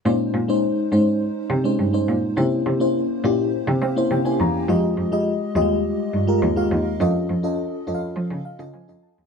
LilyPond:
<<
  \new Staff \with { instrumentName = "FM electric piano" } { \time 4/4 \key bes \dorian \tempo 4 = 104 << { r1 | r2 r8 f''8 g''16 aes''16 bes''8 | r1 | r2 r8 f''8 aes''8 a''8 | } \\ { <aes des' ees' c''>8 r16 <aes des' ees' c''>8 r16 <aes des' ees' c''>8. r8 <aes des' ees' c''>16 r16 <aes des' ees' c''>8 r16 | <bes des' e' c''>8 r16 <bes des' e' c''>8 r16 <bes des' e' g'>8. r8 <bes des' e' c''>16 r16 <bes des' e' c''>8 r16 | <aes f' g' ees''>8 r16 <aes f' g' ees''>8 r16 <g aes f' g' ees''>8. r8 <aes f' g' bes'>16 r16 <aes f' g' f''>8 r16 | <cis' f' a' ees''>8 r16 <cis' f' a' ees''>8 r16 <cis' f' a' ees'' f''>8. r8 <cis' f' a' ees''>16 r16 <cis' f' a' ees''>8 r16 | } >> }
  \new Staff \with { instrumentName = "Cello" } { \clef bass \time 4/4 \key bes \dorian bes,8 bes,8 r8 aes,8 r8 c8 g,8 bes,8 | c8 c8 r8 bes,8 r16 c16 c'8 c8 e,8 | f,8 f,8 r8 ees,8 r8 g,8 ees,8 ees,8 | f,8 f,8 r8 f,8 f16 cis16 r16 cis16 f16 f,16 r16 ees,16 | }
>>